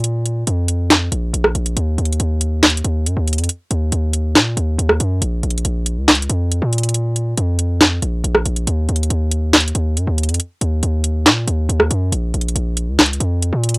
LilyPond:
<<
  \new Staff \with { instrumentName = "808-style bass" } { \clef bass \time 4/4 \key bes \minor \tempo 4 = 139 bes,4 f,4. bes,,8 bes,,8 bes,,8 | ees,8 ees,8 ees,4. ees,8 ges,16 ees,8 f,16 | r8 ees,8 ees,4 bes,8 ees,8 ees,8 ges,8 | bes,,8 bes,,8 bes,,8. des,8. f,8. bes,8.~ |
bes,4 f,4. bes,,8 bes,,8 bes,,8 | ees,8 ees,8 ees,4. ees,8 ges,16 ees,8 f,16 | r8 ees,8 ees,4 bes,8 ees,8 ees,8 ges,8 | bes,,8 bes,,8 bes,,8. des,8. f,8. bes,8. | }
  \new DrumStaff \with { instrumentName = "Drums" } \drummode { \time 4/4 hh8 hh8 hh8 hh8 <hc hh sn>8 hh8 hh16 ss16 hh16 hh16 | \tuplet 3/2 { hh16 r16 r16 hh16 hh16 hh16 } hh8 hh8 \tuplet 3/2 { <hc hh sn>16 hh16 hh16 hh16 r16 r16 } hh8 hh32 hh32 hh32 hh32 | hh8 hh8 hh8 hh8 <hc hh sn>8 hh8 hh16 ss16 hh8 | \tuplet 3/2 { hh16 r16 r16 hh16 hh16 hh16 } hh8 hh8 \tuplet 3/2 { <hc hh sn>16 hh16 hh16 hh16 r16 r16 } hh8 hh32 hh32 hh32 hh32 |
hh8 hh8 hh8 hh8 <hc hh sn>8 hh8 hh16 ss16 hh16 hh16 | \tuplet 3/2 { hh16 r16 r16 hh16 hh16 hh16 } hh8 hh8 \tuplet 3/2 { <hc hh sn>16 hh16 hh16 hh16 r16 r16 } hh8 hh32 hh32 hh32 hh32 | hh8 hh8 hh8 hh8 <hc hh sn>8 hh8 hh16 ss16 hh8 | \tuplet 3/2 { hh16 r16 r16 hh16 hh16 hh16 } hh8 hh8 \tuplet 3/2 { <hc hh sn>16 hh16 hh16 hh16 r16 r16 } hh8 hh32 hh32 hh16 | }
>>